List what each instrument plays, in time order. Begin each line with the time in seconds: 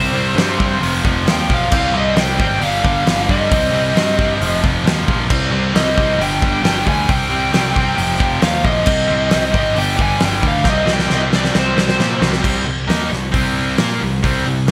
Already playing: picked electric bass C2, distorted electric guitar C3 G3 C4, lead electric guitar C5
0.13 picked electric bass C2, distorted electric guitar C3 G3 C4
0.35 picked electric bass G2, distorted electric guitar C3 G3 C4, snare, open hi-hat
0.58 distorted electric guitar C3 G3 C4, kick
0.80 picked electric bass F1, distorted electric guitar F2 C3 F3, open hi-hat
1.03 picked electric bass F1, distorted electric guitar F2 C3 F3, kick
1.26 picked electric bass D#2, distorted electric guitar F2 C3 F3, snare, open hi-hat
1.31 lead electric guitar G5
1.48 picked electric bass B1, distorted electric guitar F2 C3 F3, kick
1.54 lead electric guitar F5
1.71 picked electric bass C2, distorted electric guitar C3 G3 C4, lead electric guitar F5, kick, crash
1.93 picked electric bass C2, distorted electric guitar C3 G3 C4
1.97 lead electric guitar D#5
2.14 picked electric bass C2, distorted electric guitar C3 G3 C4, snare, open hi-hat
2.19 lead electric guitar G5
2.38 picked electric bass G#1, distorted electric guitar C3 G3 C4, lead electric guitar G5, kick
2.60 picked electric bass G1, distorted electric guitar G2 D3 G3, lead electric guitar F5, open hi-hat
2.82 picked electric bass G1, distorted electric guitar G2 D3 G3, kick
3.04 picked electric bass G1, distorted electric guitar G2 D3 G3, snare, open hi-hat
3.28 distorted electric guitar G2 D3 G3, picked electric bass G2, lead electric guitar D#5, kick
3.50 picked electric bass C2, distorted electric guitar C3 G3 C4, kick, open hi-hat
3.72 picked electric bass C2, distorted electric guitar C3 G3 C4
3.94 picked electric bass G2, distorted electric guitar C3 G3 C4, snare, open hi-hat
4.17 distorted electric guitar C3 G3 C4, kick
4.40 picked electric bass F1, distorted electric guitar F2 C3 F3, open hi-hat
4.62 picked electric bass F1, distorted electric guitar F2 C3 F3, kick
4.85 picked electric bass D#2, distorted electric guitar F2 C3 F3, snare, open hi-hat
5.07 picked electric bass A#1, distorted electric guitar F2 C3 F3, kick
5.29 picked electric bass C2, distorted electric guitar C3 G3 C4, kick, crash
5.51 picked electric bass C2, distorted electric guitar C3 G3 C4
5.74 picked electric bass C2, distorted electric guitar C3 G3 C4, lead electric guitar D#5, snare, open hi-hat
5.96 picked electric bass C2, distorted electric guitar C3 G3 C4, kick
6.18 picked electric bass G1, distorted electric guitar G2 D3 G3, lead electric guitar G5, open hi-hat
6.40 picked electric bass G1, distorted electric guitar G2 D3 G3, kick
6.63 picked electric bass G1, distorted electric guitar G2 D3 G3, snare, open hi-hat
6.67 lead electric guitar G5
6.85 picked electric bass D2, distorted electric guitar G2 D3 G3, lead electric guitar G#5, kick
7.07 picked electric bass C2, distorted electric guitar C3 G3 C4, lead electric guitar G5, kick, open hi-hat
7.29 picked electric bass C2, distorted electric guitar C3 G3 C4
7.52 picked electric bass C2, distorted electric guitar C3 G3 C4, snare, open hi-hat
7.72 distorted electric guitar C3 G3 C4, kick
7.95 picked electric bass F1, distorted electric guitar F2 C3 F3, open hi-hat
8.18 picked electric bass F1, distorted electric guitar F2 C3 F3, kick
8.41 picked electric bass D#2, distorted electric guitar F2 C3 F3, lead electric guitar F5, snare, open hi-hat
8.63 picked electric bass A#1, distorted electric guitar F2 C3 F3, lead electric guitar D#5, kick
8.86 picked electric bass C2, distorted electric guitar C3 G3 C4, kick, crash
9.07 picked electric bass C2, distorted electric guitar C3 G3 C4
9.29 distorted electric guitar C3 G3 C4, snare, open hi-hat
9.35 picked electric bass C2
9.50 picked electric bass G#1, distorted electric guitar C3 G3 C4, kick
9.56 lead electric guitar D#5
9.73 picked electric bass G1, distorted electric guitar G2 D3 G3, open hi-hat
9.78 lead electric guitar G5
9.96 picked electric bass G1, distorted electric guitar G2 D3 G3, kick
10.02 lead electric guitar G#5
10.18 picked electric bass G1, distorted electric guitar G2 D3 G3, snare, open hi-hat
10.24 lead electric guitar G5
10.40 picked electric bass D2, distorted electric guitar G2 D3 G3, kick
10.48 lead electric guitar F5
10.63 picked electric bass C2, distorted electric guitar C3 G3 C4, kick, snare
10.69 lead electric guitar D#5
10.85 picked electric bass C2, distorted electric guitar C3 G3 C4, snare
10.93 lead electric guitar G5
11.00 snare
11.07 picked electric bass C2, distorted electric guitar C3 G3 C4, snare
11.15 lead electric guitar D#5
11.30 distorted electric guitar C3 G3 C4, snare
11.35 lead electric guitar D5
11.44 snare
11.52 distorted electric guitar C3 G3 C4, snare
11.56 picked electric bass C2, lead electric guitar C5
11.75 picked electric bass C2, distorted electric guitar C3 G3 C4, snare
11.89 snare
11.96 picked electric bass A#2, distorted electric guitar C3 G3 C4, snare
12.20 picked electric bass C2, distorted electric guitar C3 G3 C4, snare
12.33 snare
12.42 picked electric bass C2, distorted electric guitar C3 G3 C4, kick, crash
12.65 picked electric bass C2, distorted electric guitar C3 G3
12.88 picked electric bass D#2, distorted electric guitar D#3 A#3 D#4, snare, open hi-hat
13.09 picked electric bass C2, distorted electric guitar C3 G3, snare
13.32 picked electric bass C2, distorted electric guitar C3 G3 C4, kick, open hi-hat
13.77 picked electric bass A#2, distorted electric guitar A#3 F4 A#4, snare, open hi-hat
14.01 picked electric bass C2, distorted electric guitar C3 G3
14.23 picked electric bass C2, distorted electric guitar C3 G3 C4, kick, open hi-hat
14.46 picked electric bass C2, distorted electric guitar C3 G3
14.68 open hi-hat